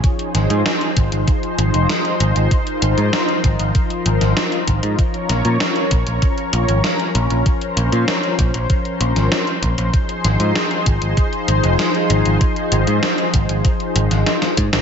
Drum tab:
HH |xxxxxxxxxxxxxxxx|xxxxxxxxxxxxxxxx|xxxxxxxxxxxxxxxx|xxxxxxxxxxxxxxxx|
SD |--o-o-------o---|----o------oo---|--o-o-------o---|----o------oo---|
BD |o-----o-o-------|o-----o-o-----o-|o-----o-o-------|o-----o-o-----o-|

HH |xxxxxxxxxxxxxxxx|xxxxxxxxxxxxxxxx|
SD |--o-o-------o---|----o------ooo-o|
BD |o-----o-o-------|o-----o-o-----o-|